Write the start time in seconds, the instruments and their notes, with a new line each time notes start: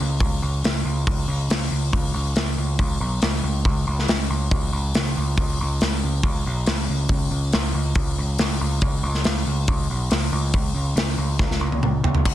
0.01 picked electric bass C#2
0.20 picked electric bass C#2, kick, open hi-hat
0.42 picked electric bass C#2
0.64 picked electric bass C#2, snare, open hi-hat
0.85 picked electric bass C#2
1.07 picked electric bass C#2, kick, open hi-hat
1.28 picked electric bass C#2
1.50 picked electric bass C#2, snare, open hi-hat
1.71 picked electric bass C#2
1.93 picked electric bass C#2, kick, open hi-hat
2.14 picked electric bass C#2
2.36 picked electric bass C#2, snare, open hi-hat
2.58 picked electric bass C#2
2.79 picked electric bass C#2, kick, open hi-hat
3.00 picked electric bass B1
3.22 picked electric bass C#2, snare, open hi-hat
3.43 picked electric bass C#2
3.65 picked electric bass C#2, kick, open hi-hat
3.87 picked electric bass C#2
3.99 snare
4.08 picked electric bass C#2, snare, open hi-hat
4.30 picked electric bass C#2
4.51 picked electric bass C#2, kick, open hi-hat
4.73 picked electric bass C#2
4.94 picked electric bass C#2, snare, open hi-hat
5.17 picked electric bass C#2
5.37 picked electric bass C#2, kick, open hi-hat
5.61 picked electric bass C#2
5.81 picked electric bass C#2, snare, open hi-hat
6.03 picked electric bass C#2
6.23 picked electric bass C#2, kick, open hi-hat
6.46 picked electric bass B1
6.66 picked electric bass C#2, snare, open hi-hat
6.90 picked electric bass C#2
7.09 picked electric bass C#2, kick, open hi-hat
7.31 picked electric bass C#2
7.52 picked electric bass C#2, snare, open hi-hat
7.74 picked electric bass C#2
7.95 picked electric bass C#2, kick, open hi-hat
8.18 picked electric bass C#2
8.38 picked electric bass C#2, snare, open hi-hat
8.61 picked electric bass C#2
8.81 picked electric bass C#2, kick, open hi-hat
9.03 picked electric bass C#2
9.15 snare
9.24 picked electric bass C#2, snare, open hi-hat
9.47 picked electric bass C#2
9.68 picked electric bass C#2, kick, open hi-hat
9.90 picked electric bass B1
10.11 picked electric bass C#2, snare, open hi-hat
10.32 picked electric bass C#2
10.54 picked electric bass C#2, kick, open hi-hat
10.75 picked electric bass C#2
10.96 picked electric bass C#2, snare, open hi-hat
11.18 picked electric bass C#2
11.39 picked electric bass C#2, kick, snare
11.51 snare
11.61 picked electric bass C#2
11.72 high tom
11.83 picked electric bass C#2, mid tom
12.04 picked electric bass C#2, floor tom
12.15 floor tom
12.25 picked electric bass C#2, kick, crash